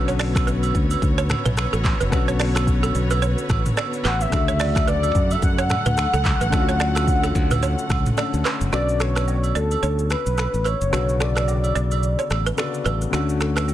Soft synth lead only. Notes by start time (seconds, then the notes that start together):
4.06 F#5
4.22 E5
4.88 D5
5.32 E5
5.44 F#5
8.74 D5
9.01 C#5
9.56 A4
10.11 B4
10.66 C#5
11.21 D5